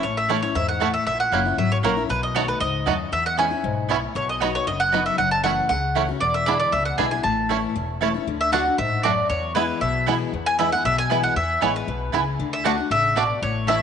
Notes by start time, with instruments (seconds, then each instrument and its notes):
0.03 upright bass A1, steel-string acoustic guitar A2, mandolin C#5
0.17 mandolin E5
0.29 steel-string acoustic guitar E3 A3 C#4 E4, mandolin A3 E4 C#5 A5, five-string banjo A3 C#4 E4
0.42 steel-string acoustic guitar C#4 E4, mandolin C#5
0.55 upright bass E2, steel-string acoustic guitar G#2, mandolin E5
0.69 mandolin F#5
0.80 steel-string acoustic guitar A2, mandolin A3 E4 C#5 A5, five-string banjo A3 C#4 E4
0.94 mandolin E5
1.06 upright bass A#1, steel-string acoustic guitar A#2, mandolin E5
1.20 mandolin F#5
1.32 upright bass F#1, steel-string acoustic guitar F#3 A#3 C#4 E4, mandolin A#3 E4 C#5 F#5, five-string banjo A#3 C#4 E4
1.45 steel-string acoustic guitar C#4 E4
1.58 upright bass G#1, steel-string acoustic guitar F#3, mandolin E5
1.72 mandolin C#5
1.83 upright bass A#1, steel-string acoustic guitar F#3 A#3 C#4 E4, mandolin A#3 E4 A#4 C#5 F#5, five-string banjo A#3 C#4 E4
1.97 steel-string acoustic guitar C#4 E4
2.09 upright bass B1, steel-string acoustic guitar B2, mandolin B4
2.23 mandolin D#5
2.35 steel-string acoustic guitar D#3 A3 B3 F#4, five-string banjo A3 D#4 F#4, mandolin B3 F#4 C#5 D#5 A5
2.48 mandolin B4
2.60 upright bass C#2, steel-string acoustic guitar G#2, mandolin D#5
2.86 upright bass D#2, steel-string acoustic guitar F#2, five-string banjo A3 D#4 F#4, mandolin B3 F#4 D#5 A5
3.12 upright bass E2, steel-string acoustic guitar E2, mandolin E5
3.26 mandolin F#5
3.37 steel-string acoustic guitar E3 G#3 C#4 E4, mandolin B3 E4 C#5 G#5, five-string banjo B3 C#4 E4
3.51 steel-string acoustic guitar C#4 E4
3.64 upright bass B1, steel-string acoustic guitar G#2
3.89 steel-string acoustic guitar A2, mandolin B3 E4 C#5 G#5, five-string banjo B3 C#4 E4
4.15 upright bass B1, steel-string acoustic guitar B2, mandolin C#5
4.29 mandolin D#5
4.40 steel-string acoustic guitar F#3 B3 D#4 F#4, mandolin B3 F#4 C#5 D#5 B5, five-string banjo B3 D#4 F#4
4.55 mandolin C#5
4.67 upright bass F#1, steel-string acoustic guitar F#2, mandolin D#5
4.80 mandolin F#5
4.92 steel-string acoustic guitar F#3 B3 D#4 F#4, mandolin B3 F#4 D#5 B5, five-string banjo B3 D#4 F#4
5.06 mandolin E5
5.18 upright bass F#1, steel-string acoustic guitar F#2, mandolin F#5
5.31 mandolin A5
5.43 steel-string acoustic guitar E3 A3 C#4 F#4, mandolin A3 E4 C#5 F#5, five-string banjo A3 C#4 E4
5.69 upright bass C#2, steel-string acoustic guitar C#3, mandolin F#5
5.95 steel-string acoustic guitar E3 A3 C#4 F#4, mandolin A3 E4 C#5 F#5, five-string banjo A3 C#4 E4
6.09 steel-string acoustic guitar C#4 F#4
6.21 upright bass E1, steel-string acoustic guitar E2, mandolin D5
6.34 mandolin E5
6.46 steel-string acoustic guitar D3 G#3 B3 E4, five-string banjo B3 D4 E4, mandolin D4 G#4 D5 E5 B5
6.60 mandolin D5
6.72 upright bass C#2, steel-string acoustic guitar B2, mandolin E5
6.85 mandolin F#5
6.98 upright bass B1, steel-string acoustic guitar D3 G#3 B3 E4, five-string banjo B3 D4 E4, mandolin D4 G#4 E5 G#5 B5
7.11 steel-string acoustic guitar B3 E4, mandolin G#5
7.23 upright bass A1, steel-string acoustic guitar A2, mandolin A5
7.49 steel-string acoustic guitar E3 A3 C#4 E4, mandolin A3 E4 C#5 A5, five-string banjo A3 C#4 E4
7.76 upright bass E1, steel-string acoustic guitar E2
8.01 steel-string acoustic guitar E3 A3 C#4 E4, mandolin A3 E4 C#5 A5, five-string banjo A3 C#4 E4
8.14 steel-string acoustic guitar C#4 E4
8.27 upright bass D2, steel-string acoustic guitar D3
8.41 mandolin E5
8.52 steel-string acoustic guitar D3 A3 D4 F#4, mandolin A3 F#4 D5 F#5 A5, five-string banjo A3 D4 F#4
8.66 steel-string acoustic guitar D4 F#4
8.78 upright bass A1, steel-string acoustic guitar G#2, mandolin E5
9.03 steel-string acoustic guitar F#2, mandolin A3 F#4 D5 A5, five-string banjo A3 D4 F#4
9.30 upright bass E2, steel-string acoustic guitar E2, mandolin C#5
9.55 steel-string acoustic guitar E3 G#3 B3 E4, mandolin B3 E4 B4 G#5, five-string banjo B3 E4
9.81 upright bass B1, steel-string acoustic guitar B2, mandolin E5
10.06 steel-string acoustic guitar E3 G#3 B3 E4, mandolin B3 E4 B4 G#5, five-string banjo B3 E4
10.33 upright bass E2, steel-string acoustic guitar E2
10.46 mandolin G#5
10.58 steel-string acoustic guitar E3 G#3 B3 E4, mandolin B3 E4 B4 E5 G#5, five-string banjo B3 E4
10.72 steel-string acoustic guitar B3 E4, mandolin F#5
10.85 upright bass B1, steel-string acoustic guitar B2, mandolin E5
10.98 mandolin G#5
11.10 steel-string acoustic guitar E3 G#3 B3 E4, mandolin B3 E4 B4 G#5, five-string banjo B3 E4
11.23 mandolin F#5
11.36 upright bass E2, steel-string acoustic guitar E2, mandolin E5
11.61 upright bass A1, steel-string acoustic guitar E3 G#3 B3 E4, mandolin B3 E4 B4 C#5 G#5, five-string banjo B3 E4
11.76 mandolin B4
11.87 upright bass B1, steel-string acoustic guitar B2
12.12 upright bass C#2, steel-string acoustic guitar C#3, mandolin B3 E4 B4 G#5, five-string banjo B3 E4
12.39 upright bass D2, steel-string acoustic guitar D3
12.53 mandolin E5
12.64 steel-string acoustic guitar D3 A3 D4 F#4, mandolin A3 F#4 D5 F#5 A5, five-string banjo A3 D4 F#4
12.78 steel-string acoustic guitar D4 F#4
12.90 upright bass A1, steel-string acoustic guitar C#3, mandolin E5
13.16 steel-string acoustic guitar B2, mandolin A3 F#4 D5 A5, five-string banjo A3 D4 F#4
13.42 upright bass A1, steel-string acoustic guitar A2, mandolin C#5
13.67 steel-string acoustic guitar E3 A3 C#4 E4, mandolin A3 E4 C#5 E5 A5, five-string banjo A3 C#4 E4